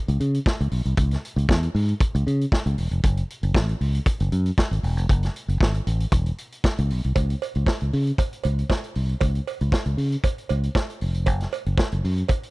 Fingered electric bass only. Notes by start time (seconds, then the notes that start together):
0.08 C#2
0.20 C#3
0.61 C#2
0.72 B1
0.85 C2
0.98 C#2
1.36 C#2
1.49 E2
1.75 G#2
2.15 C#2
2.27 C#3
2.66 C#2
2.78 E1
2.91 F1
3.04 F#1
3.43 F#1
3.55 A1
3.81 C#2
4.21 F#1
4.32 F#2
4.71 G#1
4.83 E1
4.97 F1
5.10 F#1
5.48 F#1
5.61 G#1
5.87 A1
6.12 E1
6.79 C#2
6.92 B1
7.05 C2
7.16 C#2
7.56 C#2
7.82 C#2
7.93 C#3
8.45 C#2
8.96 C2
9.21 C#2
9.61 C#2
9.86 C#2
9.97 C#3
10.50 C#2
11.02 F1
11.27 F#1
11.67 F#1
11.93 F#1
12.04 F#2